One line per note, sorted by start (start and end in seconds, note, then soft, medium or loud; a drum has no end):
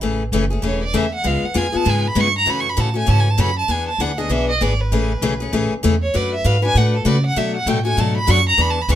0.01 0.31 A1 medium
0.01 0.21 C#3 medium
0.01 0.22 E3 medium
0.01 0.22 A3 medium
0.01 0.22 C#4 medium
0.01 0.22 G#4 medium
0.32 0.62 F#1 medium
0.32 0.44 C#3 medium
0.32 0.44 E3 medium
0.32 0.44 A3 medium
0.32 0.44 C#4 medium
0.32 0.44 G#4 medium
0.50 0.62 A3 soft
0.50 0.62 C#4 soft
0.50 0.62 G#4 medium
0.62 0.93 E1 medium
0.62 0.82 C#3 medium
0.62 0.83 E3 medium
0.62 0.83 A3 medium
0.62 0.83 C#4 medium
0.62 0.83 G#4 medium
0.66 0.82 C#5 medium
0.83 0.98 D5 medium
0.93 1.24 E2 medium
0.93 1.05 C#3 medium
0.93 1.05 E3 medium
0.93 1.05 A3 medium
0.93 1.05 C#4 medium
0.93 1.05 G#4 medium
0.93 1.14 E5 medium
1.15 1.28 F#5 loud
1.24 1.42 C#2 medium
1.24 1.44 C#3 medium
1.24 1.44 G#3 medium
1.24 1.44 B3 medium
1.24 1.44 F4 medium
1.24 1.44 G#4 medium
1.24 1.47 F5 medium
1.43 1.59 F#5 medium
1.43 muted upright bass stroke soft
1.54 1.72 F2 medium
1.54 1.65 C#3 medium
1.54 1.66 G#3 medium
1.54 1.66 B3 medium
1.54 1.66 F4 loud
1.54 1.66 G#4 loud
1.54 1.78 G#5 medium
1.72 1.85 B3 soft
1.72 1.85 F4 medium
1.72 1.85 G#4 medium
1.72 muted upright bass stroke soft
1.77 1.91 A5 loud
1.85 2.15 G#2 medium
1.85 2.05 C#3 medium
1.85 2.05 G#3 medium
1.85 2.06 B3 medium
1.85 2.06 F4 medium
1.85 2.05 G#4 medium
1.89 2.09 G#5 medium
2.07 2.22 B5 medium
2.15 2.46 G2 loud
2.15 2.27 C#3 medium
2.15 2.27 G#3 medium
2.15 2.27 B3 medium
2.15 2.27 F4 medium
2.15 2.27 G#4 medium
2.20 2.37 C#6 loud
2.38 2.51 A#5 medium
2.46 2.76 F#2 medium
2.46 2.66 C#3 medium
2.46 2.66 E3 medium
2.46 2.67 A3 medium
2.46 2.67 C#4 medium
2.46 2.67 F#4 medium
2.46 2.62 B5 medium
2.60 2.71 C#6 medium
2.69 2.81 B5 medium
2.77 3.07 A2 medium
2.77 2.88 C#3 medium
2.77 2.88 E3 medium
2.77 2.88 A3 medium
2.77 2.88 C#4 medium
2.77 2.89 F#4 medium
2.77 2.97 A5 medium
2.94 3.06 A3 soft
2.94 3.06 C#4 medium
2.94 3.07 F#4 medium
2.98 3.11 G#5 medium
3.06 3.38 G#2 medium
3.06 3.27 C#3 medium
3.06 3.27 E3 medium
3.06 3.27 A3 medium
3.06 3.27 C#4 medium
3.06 3.28 F#4 medium
3.06 3.22 A5 loud
3.20 3.32 G#5 medium
3.30 3.41 A5 medium
3.38 3.68 F#2 medium
3.38 3.49 C#3 medium
3.38 3.49 E3 medium
3.38 3.49 A3 medium
3.38 3.49 C#4 medium
3.38 3.50 F#4 medium
3.38 3.58 B5 loud
3.59 3.72 A5 medium
3.68 3.98 E2 medium
3.68 3.88 E3 medium
3.68 3.89 B3 medium
3.68 3.89 D4 medium
3.68 3.89 G#4 medium
3.68 3.87 G#5 medium
3.88 4.02 A5 loud
3.99 4.29 D2 medium
3.99 4.11 E3 medium
3.99 4.11 B3 medium
3.99 4.11 D4 medium
3.99 4.11 G#4 medium
3.99 4.19 F#5 medium
4.18 4.29 B3 soft
4.18 4.29 D4 medium
4.18 4.29 G#4 medium
4.18 4.33 D#5 medium
4.29 4.59 B1 medium
4.29 4.50 E3 medium
4.29 4.50 B3 medium
4.29 4.50 D4 medium
4.29 4.50 G#4 medium
4.29 4.49 E5 medium
4.49 4.64 D#5 medium
4.61 4.91 G#1 medium
4.61 4.72 E3 medium
4.61 4.72 B3 medium
4.61 4.72 D4 medium
4.61 4.72 G#4 medium
4.61 4.82 D5 medium
4.80 5.53 B4 medium
4.92 5.21 A1 medium
4.92 5.11 C#3 medium
4.92 5.11 E3 medium
4.92 5.12 A3 medium
4.92 5.12 C#4 medium
4.92 5.12 G#4 medium
5.21 5.51 B1 medium
5.21 5.33 C#3 medium
5.21 5.33 E3 medium
5.21 5.33 A3 loud
5.21 5.33 C#4 loud
5.21 5.33 G#4 medium
5.40 5.52 A3 soft
5.40 5.53 C#4 medium
5.40 5.52 G#4 medium
5.53 5.70 A1 medium
5.53 5.72 C#3 medium
5.53 5.73 E3 medium
5.53 5.73 A3 medium
5.53 5.73 C#4 medium
5.53 5.73 G#4 medium
5.72 muted upright bass stroke soft
5.83 6.14 E2 loud
5.83 5.94 C#3 medium
5.83 5.94 E3 medium
5.83 5.94 A3 loud
5.83 5.94 C#4 loud
5.83 5.95 G#4 loud
6.02 6.17 C#5 medium
6.14 6.44 F#2 medium
6.14 6.33 A3 medium
6.14 6.34 D4 medium
6.14 6.34 F#4 medium
6.14 6.34 B4 medium
6.14 6.33 D5 medium
6.34 6.48 E5 medium
6.44 6.74 G#2 medium
6.44 6.55 A3 medium
6.44 6.55 D4 medium
6.44 6.56 F#4 medium
6.44 6.56 B4 loud
6.44 6.63 F5 medium
6.62 6.75 D4 soft
6.62 6.75 F#4 soft
6.62 6.74 B4 medium
6.62 6.79 G#5 loud
6.75 7.05 A2 medium
6.75 6.95 A3 medium
6.75 6.95 D4 medium
6.75 6.96 F#4 medium
6.75 6.96 B4 medium
6.75 6.94 F#5 medium
6.96 7.09 A4 medium
7.05 7.35 C#3 medium
7.05 7.16 A3 medium
7.05 7.16 D4 medium
7.05 7.17 F#4 medium
7.05 7.17 B4 loud
7.05 7.25 D5 medium
7.26 7.39 F#5 loud
7.36 7.56 B2 medium
7.36 7.66 B2 medium
7.36 7.56 F#3 medium
7.36 7.56 A3 medium
7.36 7.56 D4 medium
7.36 7.56 F#4 medium
7.36 7.55 E5 medium
7.56 7.70 F#5 loud
7.66 7.96 A2 loud
7.66 7.78 B2 medium
7.66 7.78 F#3 medium
7.66 7.78 A3 medium
7.66 7.78 D4 medium
7.66 7.78 F#4 loud
7.66 7.85 G5 medium
7.85 7.97 A3 soft
7.85 7.97 D4 medium
7.85 7.97 F#4 medium
7.85 8.01 G#5 medium
7.97 8.27 G#2 medium
7.97 8.17 B2 medium
7.97 8.17 F#3 medium
7.97 8.17 A3 medium
7.97 8.17 D4 medium
7.97 8.17 F#4 medium
7.97 8.16 A5 medium
8.17 8.32 B5 loud
8.27 8.58 F#2 loud
8.27 8.38 B2 medium
8.27 8.38 F#3 medium
8.27 8.39 A3 loud
8.27 8.39 D4 medium
8.27 8.39 F#4 loud
8.27 8.47 C#6 loud
8.49 8.63 A#5 loud
8.58 8.88 E2 medium
8.58 8.78 E3 medium
8.58 8.78 B3 medium
8.58 8.78 D4 medium
8.58 8.78 G#4 medium
8.58 8.72 B5 loud
8.70 8.83 A5 medium
8.81 8.93 B5 medium
8.89 8.95 D2 loud
8.89 8.95 E3 medium
8.89 8.95 B3 medium
8.89 8.95 D4 loud
8.89 8.95 G#4 loud
8.89 8.95 C#6 loud